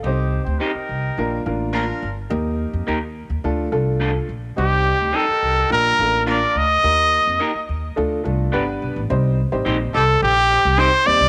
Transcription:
<<
  \new Staff \with { instrumentName = "Vibraphone" } { \time 4/4 \key c \dorian \tempo 4 = 106 r1 | r1 | r1 | r1 |
r4. a'8 r4 c''8 d''8 | }
  \new Staff \with { instrumentName = "Trumpet" } { \time 4/4 \key c \dorian r1 | r1 | g'4 a'4 bes'4 d''8 ees''8~ | ees''4. r2 r8 |
r4. a'8 g'4 c''8 d''8 | }
  \new Staff \with { instrumentName = "Horn section" } { \time 4/4 \key c \dorian <c' ees' g'>8. <ees' g' c''>16 <ees' g' bes'>4. r8 <d' f' bes'>8. r16 | r1 | <c' ees' g'>8. <ees' g' c''>16 <ees' g' bes'>4. r8 <d' f' bes'>8. r16 | r1 |
r4. <c' ees' g'>16 r16 <c' ees' g'>16 r16 <c' ees' g'>16 r16 <c' ees' g'>8. r16 | }
  \new Staff \with { instrumentName = "Clean electric guitar" } { \time 4/4 \key c \dorian r4 <g c' ees' g'>8 r4. <bes d' f' bes'>8 r8 | r4 <bes ees' g' bes'>8 r4. <a d' f' a'>8 r8 | r4 <g c' ees' g'>8 r4. <bes d' f' bes'>8 r8 | r4 <bes ees' g' bes'>8 r4. <b d' g' b'>8 r8 |
r4 <c' ees' g' c''>8 r4. <c' ees' g' c''>8 r8 | }
  \new Staff \with { instrumentName = "Upright piano" } { \time 4/4 \key c \dorian << { <a' f''>16 r2. r8. | r1 | r1 | r1 |
r1 | } \\ { <c' ees' g' c''>4~ <c' ees' g' c''>16 r8. <bes d' f' bes'>8 <bes d' f' bes'>4 r8 | <bes ees' g' bes'>4~ <bes ees' g' bes'>16 r8. <a d' f' a'>8 <a d' f' a'>4 r8 | <g c' ees' g'>4~ <g c' ees' g'>16 r8. <bes d' f' bes'>8 <bes d' f' a' bes'>4 r8 | <bes ees' g' bes'>4~ <bes ees' g' bes'>16 r8. <a d' f' a'>8 <a d' f' a'>8 <b d' g' b'>8. r16 |
<g c' ees' g' c''>8 r16 <g c' ees' g' c''>4~ <g c' ees' g' c''>16 r4. <g c' ees' g' c''>16 r16 | } >> }
  \new Staff \with { instrumentName = "Upright bass" } { \clef bass \time 4/4 \key c \dorian c,8. d,16 r8 c,8 bes,,8 a,,4 g,,8 | ees,8. f,16 ees,8. ees,16 d,8 c,4 bes,,8 | c,8. d,16 r8 c,8 bes,,8 a,,4 d,8 | ees,8. f,16 r8 ees,8 d,8 c,8 g,,8 b,,16 a,,16 |
c,8. a,,16 bes,,8 c,8 bes,,8. c,8 r16 ees,16 c,16 | }
>>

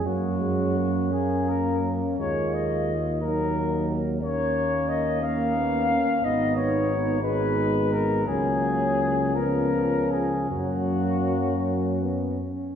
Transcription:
<<
  \new Staff \with { instrumentName = "Cornet" } { \time 6/8 \key fis \major \tempo 4. = 57 fis'4. gis'8 ais'8 r8 | cis''8 dis''4 ais'4 r8 | cis''4 dis''8 eis''4. | dis''8 cis''4 b'4 ais'8 |
gis'4. ais'4 gis'8 | fis'2~ fis'8 r8 | }
  \new Staff \with { instrumentName = "French horn section" } { \time 6/8 \key fis \major cis'2. | eis'4. dis'4. | cis'4. ais8 b8 cis'8 | dis'4. dis'4. |
cis'4. cis'4. | cis'2~ cis'8 r8 | }
  \new Staff \with { instrumentName = "Euphonium" } { \time 6/8 \key fis \major ais8 gis8 ais2 | ais4 r8 ais4. | ais4. cis'4. | b4. b4. |
ais4. b4. | ais4. ais8 b8 cis'8 | }
  \new Staff \with { instrumentName = "Trombone" } { \clef bass \time 6/8 \key fis \major fis4. ais4. | gis4 r8 fis4. | ais4. ais4. | b4. gis4. |
fis4. eis4. | fis2~ fis8 r8 | }
  \new Staff \with { instrumentName = "Tuba" } { \clef bass \time 6/8 \key fis \major fis,2. | dis,2.~ | dis,2~ dis,8 r8 | gis,,2. |
cis,2. | fis,2~ fis,8 r8 | }
>>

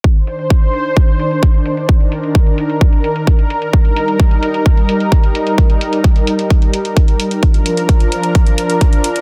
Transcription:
<<
  \new Staff \with { instrumentName = "Analog synth pad" } { \time 4/4 \key c \minor \tempo 4 = 130 << { c''1 | bes'1~ | bes'1~ | bes'1 |
bes'1 | } \\ { <ees d'>1~ | <ees d'>1 | <g ees'>1~ | <g ees'>1 |
<f d'>1 | } >> }
  \new DrumStaff \with { instrumentName = "Drums" } \drummode { \time 4/4 bd16 hh16 hh16 hh16 bd16 hh16 hh16 hh16 bd16 hh16 hh16 hh16 <hh bd>16 hh16 hh16 hh16 | bd16 hh16 hh16 hh16 <hh bd>16 hh16 hh16 hh16 <hh bd>16 hh16 hh16 hh16 <hh bd>16 hh16 hh16 hh16 | <hh bd>16 hh16 hh16 hh16 <hh bd>16 hh16 hh16 hh16 <hh bd>16 hh16 hh16 hh16 <hh bd>16 hh16 hh16 hh16 | <hh bd>16 hh16 hh16 hh16 <hh bd>16 hh16 hh16 hh16 <hh bd>16 hh16 hh16 hh16 <hh bd>16 hh16 hh16 hh16 |
<hh bd>16 hh16 hh16 hh16 <hh bd>16 hh16 hh16 hh16 <hh bd>16 hh16 hh16 hh16 <hh bd>16 hh16 hh16 hh16 | }
>>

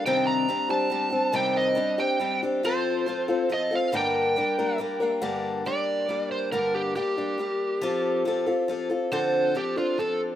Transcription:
<<
  \new Staff \with { instrumentName = "Electric slide guitar" } { \time 3/4 \key g \minor \tempo 4 = 139 g''8 bes''4 a''4. | g''8 ees''4 g''4 r8 | c''2 ees''8 f''8 | g''2 r4 |
r4 d''4. c''8 | bes'8 g'8 g'2~ | g'4 r2 | c''4 g'8 f'8 a'8 r8 | }
  \new Staff \with { instrumentName = "Steel-string acoustic guitar" } { \time 3/4 \key g \minor <c ees g c' d' g'>4 <g c' d' g'>8 <g c' d' g'>8 <g c' d' g'>8 <g c' d' g'>8 | <c ees g c' d' g'>4 <g c' d' g'>8 <g c' d' g'>8 <g c' d' g'>8 <g c' d' g'>8 | <f c' f' a'>4 <f c' f' a'>8 <c' f' a'>8 <f c' f' a'>8 <c' f' a'>8 | <g, d g bes d' bes'>4 <g bes d' bes'>8 <g bes d' bes'>8 <g bes d' bes'>8 <g bes d' bes'>8 |
<g, d g bes d' g'>4 <g bes d' g'>4 <g bes d' g'>4 | <g, d g bes d' g'>4 <g bes d' g'>8 <g bes d' g'>8 <g bes d' g'>4 | <f c' f' a'>4 <f c' f' a'>8 <c' f' a'>8 <f c' f' a'>8 <c' f' a'>8 | <d f c' d' a'>4 <f c' d' a'>8 <c' d' a'>8 <f c' d' a'>4 | }
>>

